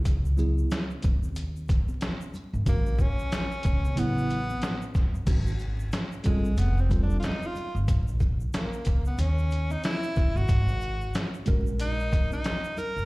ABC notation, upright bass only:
X:1
M:4/4
L:1/16
Q:"Swing 16ths" 1/4=92
K:G#m
V:1 name="Upright bass" clef=bass
C,,4 z2 D,,4- D,, z4 G,,, | A,,,4 z2 C,,2 =A,,,4 z3 F,,, | G,,,4 z2 A,,,2 =F,,,4 z3 =G,,, | A,,,4 z2 C,,2 D,,4 z3 =G,,, |
G,,,4 z2 A,,,4- A,,, z4 F,,, |]